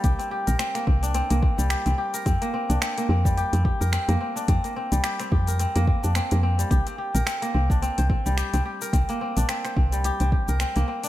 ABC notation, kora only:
X:1
M:4/4
L:1/16
Q:"Swing 16ths" 1/4=108
K:F
V:1 name="Kora"
G C G B C B, C D C B, C G, G C G B | C B, C D C B, C G, G C G B C B, C D | C B, C G, G C G B C B, C D C B, C G, | G C G B C B, C D C c C G, G C G B |
C B, C D C c C G, G C G B C B, C D |]